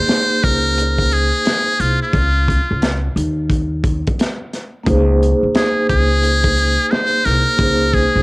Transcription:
Already playing: vibraphone A#3 D#4 G#4 C5, muted trumpet C5
0.09 snare, closed hi-hat
0.44 upright bass C#2, muted trumpet A#4, kick, closed hi-hat
0.78 closed hi-hat
0.98 kick
1.11 muted trumpet G#4, closed hi-hat
1.45 snare, closed hi-hat
1.80 upright bass C2, muted trumpet F4, closed hi-hat
2.03 muted trumpet F4
2.14 upright bass C#2, kick, closed hi-hat
2.48 kick, closed hi-hat
2.71 upright bass C#2
2.82 snare, closed hi-hat
3.16 upright bass D#2, closed hi-hat
3.50 kick, closed hi-hat
3.84 kick, closed hi-hat
4.07 kick, closed hi-hat
4.19 snare, closed hi-hat
4.53 snare, closed hi-hat
4.83 upright bass C#2, vibraphone A#3 D#4 G#4, kick, closed hi-hat
4.89 vibraphone C5
5.23 closed hi-hat
5.43 upright bass D#2
5.55 muted trumpet G#4, snare, closed hi-hat
5.89 upright bass C#2, muted trumpet G#4, kick, closed hi-hat
6.23 closed hi-hat
6.44 kick
6.57 closed hi-hat
6.91 muted trumpet C5, snare, closed hi-hat
7.25 upright bass C2, muted trumpet A#4, snare, closed hi-hat
7.56 upright bass C#2, vibraphone A#3 D#4, kick, closed hi-hat
7.61 vibraphone G#4 C5
7.94 muted trumpet G#4, kick, closed hi-hat
8.16 upright bass C#2

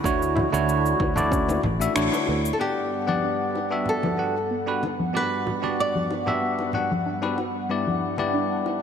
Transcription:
Already playing: analog synth pad D3 E4 F#4
0.04 fretless electric bass D2, tine electric piano A3 D4 E4 F#4 C#5, kick, cabasa
0.22 cabasa
0.36 synth pluck E4, low conga
0.52 fretless electric bass D2, tine electric piano A3 D4 E4 F#4 C#5, high conga, cabasa
0.69 cabasa
0.86 cabasa
0.99 fretless electric bass D2, synth pluck F#4, kick, high bongo
1.16 tine electric piano A3 D4 E4 F#4 D5, low conga, cabasa
1.31 synth pluck C#4, kick, cabasa
1.49 high bongo, high conga, cabasa
1.63 fretless electric bass A1, kick, low conga
1.80 tine electric piano A3 D4 E4 F#4 E5, cabasa
1.95 fretless electric bass A1, tine electric piano A3 D4 E4 F#4 C#5, synth pluck D4, finger snap, cabasa
2.12 high bongo, cabasa
2.27 fretless electric bass D2, synth pluck E4, high bongo
2.45 cabasa
2.53 nylon-string guitar A4
2.59 analog synth pad G2 G3 B3 F#5, tine electric piano B3 D4 G4 D5 F#5, synth pluck B3, nylon-string guitar G4
3.07 tine electric piano B3 D4 G4 D5 F#5, high conga, low conga
3.23 synth pluck D4
3.55 synth pluck F#4, high bongo
3.70 tine electric piano B3 D4 F#4 G4 E5
3.86 nylon-string guitar A4, low conga
4.03 high bongo, high conga, low conga
4.17 tine electric piano B3 D4 F#4 G4 F#5, synth pluck G4
4.51 synth pluck B3
4.66 tine electric piano B3 D4 F#4 G4 B4
4.83 synth pluck D4, high bongo, high conga
5.00 low conga
5.13 tine electric piano B3 D4 F#4 G4 D5, nylon-string guitar B4
5.47 synth pluck F#4, low conga
5.62 tine electric piano B3 D4 F#4 G4 D5, high conga
5.80 nylon-string guitar D5
5.95 low conga
6.10 synth pluck G4, high bongo
6.26 tine electric piano B3 D4 F#4 G4 E5, low conga
6.42 synth pluck B3
6.59 high bongo
6.73 tine electric piano B3 D4 F#4 G4 F#5, low conga
6.92 low conga
7.06 synth pluck D4
7.22 tine electric piano B3 D4 F#4 G4 B4, high bongo
7.38 synth pluck F#4, high bongo
7.69 tine electric piano G2 B3 D4 E4 G4 D5, synth pluck B3, analog synth pad D4
7.87 low conga
8.17 tine electric piano G2 B3 D4 E4 G4 D5, high conga
8.34 synth pluck D4
8.66 synth pluck E4, high bongo

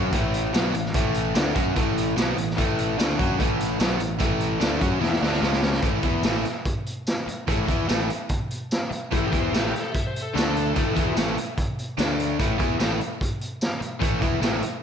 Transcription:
Already playing: picked electric bass F#2, overdriven electric guitar F#3 C#4 F#4
0.13 picked electric bass A1, overdriven electric guitar A2 E3 A3, kick, closed hi-hat
0.34 closed hi-hat
0.53 picked electric bass B1, overdriven electric guitar B2 F#3 B3, snare, closed hi-hat, tambourine
0.74 picked electric bass A1, overdriven electric guitar A2 E3, closed hi-hat
0.85 snare
0.94 picked electric bass A1, overdriven electric guitar A2 E3 A3, kick, closed hi-hat
1.14 closed hi-hat
1.35 picked electric bass D2, overdriven electric guitar D3 A3 D4, snare, closed hi-hat, tambourine
1.55 picked electric bass F#2, overdriven electric guitar F#3 C#4 F#4, kick, closed hi-hat
1.76 picked electric bass A1, overdriven electric guitar A2 E3 A3, kick, closed hi-hat
1.97 closed hi-hat
2.17 picked electric bass B1, overdriven electric guitar B2 F#3 B3, snare, closed hi-hat, tambourine
2.36 picked electric bass A1, overdriven electric guitar A2 E3, closed hi-hat
2.50 snare
2.57 picked electric bass A1, overdriven electric guitar A2 E3 A3, kick, closed hi-hat
2.79 closed hi-hat
2.98 picked electric bass D2, overdriven electric guitar D3 A3 D4, snare, closed hi-hat, tambourine
3.17 picked electric bass F#2, overdriven electric guitar F#3 C#4 F#4, kick, closed hi-hat
3.38 picked electric bass A1, overdriven electric guitar A2 E3 A3, kick, closed hi-hat
3.60 closed hi-hat
3.79 picked electric bass B1, overdriven electric guitar B2 F#3 B3, snare, closed hi-hat, tambourine
3.99 picked electric bass A1, overdriven electric guitar A2 E3, closed hi-hat
4.19 picked electric bass A1, overdriven electric guitar A2 E3 A3, kick, closed hi-hat
4.40 closed hi-hat
4.60 picked electric bass D2, overdriven electric guitar D3 A3 D4, snare, closed hi-hat, tambourine
4.81 picked electric bass F#2, overdriven electric guitar F#3 C#4 F#4, kick, closed hi-hat
5.00 picked electric bass E2, overdriven electric guitar E3 B3 E4, snare
5.13 snare
5.21 picked electric bass D2, overdriven electric guitar D3 A3 D4, snare
5.33 snare
5.41 picked electric bass C#2, overdriven electric guitar C#3 G#3 C#4, snare
5.53 snare
5.62 snare
5.73 snare
5.82 picked electric bass A1, overdriven electric guitar A2 E3 A3, kick, closed hi-hat
6.02 picked electric bass E2, overdriven electric guitar E3 B3 E4, kick, closed hi-hat
6.23 picked electric bass A1, overdriven electric guitar A2 E3 A3, snare, closed hi-hat, tambourine
6.45 snare, closed hi-hat
6.65 kick, closed hi-hat
6.86 closed hi-hat
7.07 snare, closed hi-hat, tambourine
7.27 muted picked electric bass stroke, muted overdriven electric guitar stroke, closed hi-hat
7.48 picked electric bass A1, overdriven electric guitar A2 E3 A3, kick, closed hi-hat
7.67 picked electric bass E2, overdriven electric guitar E3 B3 E4, kick, closed hi-hat
7.88 picked electric bass A1, overdriven electric guitar A2 E3 A3, snare, closed hi-hat, tambourine
8.10 closed hi-hat
8.29 kick, closed hi-hat
8.51 closed hi-hat
8.71 snare, closed hi-hat, tambourine
8.91 muted overdriven electric guitar stroke, muted picked electric bass stroke, closed hi-hat
9.12 picked electric bass A1, overdriven electric guitar A2 E3 A3, lead electric guitar E4, kick, closed hi-hat
9.26 lead electric guitar G4
9.31 picked electric bass E2, overdriven electric guitar E3 B3 E4, kick, closed hi-hat
9.39 lead electric guitar C5
9.52 picked electric bass A1, overdriven electric guitar A2 E3 A3, lead electric guitar A4, snare, closed hi-hat, tambourine
9.66 lead electric guitar G4
9.75 snare, closed hi-hat
9.80 lead electric guitar A4
9.92 lead electric guitar E5, kick, closed hi-hat
10.07 lead electric guitar C5
10.16 closed hi-hat
10.22 lead electric guitar A4
10.34 picked electric bass D2, overdriven electric guitar D3 A3 D4, lead electric guitar A4, closed hi-hat, tambourine
10.38 snare
10.56 closed hi-hat
10.75 picked electric bass A1, overdriven electric guitar A2 E3 A3, kick, closed hi-hat
10.95 picked electric bass E2, overdriven electric guitar E3 B3 E4, kick, closed hi-hat
11.17 picked electric bass A1, overdriven electric guitar A2 E3 A3, snare, closed hi-hat, tambourine
11.38 closed hi-hat
11.57 kick, closed hi-hat
11.79 closed hi-hat
11.98 picked electric bass D2, overdriven electric guitar D3 A3 D4, snare, closed hi-hat, tambourine
12.20 closed hi-hat
12.39 picked electric bass A1, overdriven electric guitar A2 E3 A3, kick, closed hi-hat
12.58 picked electric bass E2, overdriven electric guitar E3 B3 E4, kick, closed hi-hat
12.79 picked electric bass A1, overdriven electric guitar A2 E3 A3, snare, closed hi-hat, tambourine
13.01 closed hi-hat
13.21 kick, closed hi-hat
13.41 closed hi-hat
13.61 snare, closed hi-hat, tambourine
13.81 muted overdriven electric guitar stroke, muted picked electric bass stroke, closed hi-hat
14.00 picked electric bass A1, overdriven electric guitar A2 E3 A3, kick, closed hi-hat
14.21 picked electric bass E2, overdriven electric guitar E3 B3 E4, kick, closed hi-hat
14.40 picked electric bass A1, overdriven electric guitar A2 E3 A3, snare, closed hi-hat, tambourine
14.62 closed hi-hat

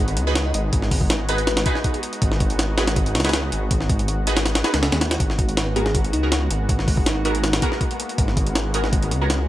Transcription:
Already playing: detuned saw bass G#1, analog synth pad G#3 B3 D#4 F#4
0.08 closed hi-hat
0.17 detuned saw bass C#2, closed hi-hat
0.27 synth stab D#4 F#4 G#4 B4, fm electric piano B4
0.35 snare, closed hi-hat
0.46 fm electric piano D#5
0.54 detuned saw bass G#1, fm electric piano D#5, closed hi-hat
0.73 detuned saw bass G#1, kick, closed hi-hat
0.82 snare
0.91 kick, open hi-hat
1.01 kick
1.10 snare, closed hi-hat
1.29 synth stab D#4 F#4 G#4 B4, fm electric piano B4, closed hi-hat
1.38 closed hi-hat
1.47 fm electric piano B4, snare, closed hi-hat
1.57 snare, closed hi-hat
1.66 synth stab D#4 F#4 G#4 B4, kick, closed hi-hat
1.75 snare
1.84 kick, closed hi-hat
1.94 closed hi-hat
2.03 closed hi-hat
2.13 closed hi-hat
2.22 detuned saw bass G#1, kick, closed hi-hat
2.32 snare
2.40 kick, closed hi-hat
2.50 closed hi-hat
2.59 snare, closed hi-hat
2.78 synth stab D#4 F#4 G#4 B4, snare, closed hi-hat
2.87 snare, closed hi-hat
2.96 kick, closed hi-hat
3.06 closed hi-hat
3.15 detuned saw bass C#2, snare, closed hi-hat
3.20 snare, closed hi-hat
3.25 synth stab D#4 F#4 G#4 B4, snare, closed hi-hat
3.29 snare, closed hi-hat
3.33 snare, closed hi-hat
3.52 detuned saw bass G#1, closed hi-hat
3.71 detuned saw bass G#1, kick, closed hi-hat
3.81 snare
3.90 kick, closed hi-hat
3.99 closed hi-hat
4.08 closed hi-hat
4.27 synth stab D#4 F#4 G#4 B4, closed hi-hat
4.37 snare, closed hi-hat
4.46 snare, closed hi-hat
4.55 snare, closed hi-hat
4.64 synth stab D#4 F#4 G#4 B4, snare, closed hi-hat
4.74 detuned saw bass C#2, snare, closed hi-hat
4.83 snare, closed hi-hat
4.92 detuned saw bass D#2, snare, closed hi-hat
5.01 snare, closed hi-hat
5.11 snare, closed hi-hat
5.20 detuned saw bass G#1, analog synth pad G#3 A#3 B3, kick, closed hi-hat
5.30 snare
5.39 kick, closed hi-hat
5.49 closed hi-hat
5.57 fm electric piano B4, snare, closed hi-hat
5.76 synth stab B3 F#4 G#4 A#4, fm electric piano G#4, closed hi-hat
5.86 snare
5.95 kick, closed hi-hat
6.04 closed hi-hat
6.13 detuned saw bass C#2, fm electric piano D#4, closed hi-hat
6.23 synth stab B3 F#4 G#4 A#4
6.32 snare, closed hi-hat
6.51 detuned saw bass G#1, closed hi-hat
6.69 detuned saw bass G#1, kick, closed hi-hat
6.79 snare
6.88 kick, open hi-hat
6.97 kick
7.06 fm electric piano D#4, snare, closed hi-hat
7.25 synth stab B3 F#4 G#4 A#4, fm electric piano D#4, closed hi-hat
7.35 closed hi-hat
7.44 snare, closed hi-hat
7.53 snare, closed hi-hat
7.62 synth stab B3 F#4 G#4 A#4, kick, closed hi-hat
7.72 snare
7.81 kick, closed hi-hat
7.91 closed hi-hat
8.00 closed hi-hat
8.09 closed hi-hat
8.18 detuned saw bass G#1, kick, closed hi-hat
8.28 snare
8.37 kick, closed hi-hat
8.47 closed hi-hat
8.55 snare, closed hi-hat
8.74 synth stab B3 F#4 G#4 A#4, closed hi-hat
8.84 snare
8.93 kick, closed hi-hat
9.03 closed hi-hat
9.11 detuned saw bass C#2, closed hi-hat
9.21 synth stab B3 F#4 G#4 A#4
9.30 snare, closed hi-hat

